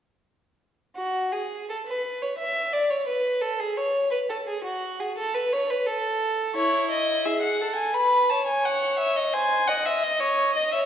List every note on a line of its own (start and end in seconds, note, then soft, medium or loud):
0.97 1.34 F#4 medium
1.33 1.68 G#4 medium
1.70 1.76 A4 medium
1.86 2.24 B4 medium
2.22 2.38 C#5 medium
2.39 2.75 E5 medium
2.73 2.91 D5 medium
2.90 3.07 C#5 medium
3.08 3.43 B4 medium
3.41 3.61 A4 medium
3.60 3.79 G#4 medium
3.78 4.11 C#5 medium
4.11 4.18 B4 medium
4.29 4.37 A4 medium
4.48 4.64 G#4 medium
4.64 5.01 F#4 medium
5.00 5.17 G#4 medium
5.18 5.35 A4 medium
5.34 5.54 B4 medium
5.53 5.72 C#5 medium
5.70 5.88 B4 medium
5.87 6.56 A4 medium
6.55 7.27 E4 medium
6.55 6.88 C#5 medium
6.91 7.27 D#5 medium
7.25 7.63 G#4 medium
7.25 7.41 E5 medium
7.42 7.75 F#5 medium
7.62 7.94 A4 medium
7.76 7.95 G#5 medium
7.94 8.33 B4 medium
7.94 8.31 B5 medium
8.30 9.35 C#5 medium
8.30 8.46 A5 medium
8.47 8.67 G#5 medium
8.65 8.99 F#5 medium
8.99 9.18 E5 medium
9.16 9.35 D#5 medium
9.34 9.71 C5 medium
9.34 9.69 G#5 loud
9.67 10.74 D#5 medium
9.67 9.87 F#5 medium
9.86 10.05 E5 medium
10.04 10.22 D#5 medium
10.20 10.55 C#5 medium
10.55 10.72 D#5 medium
10.72 10.86 C#5 medium
10.72 10.79 E5 medium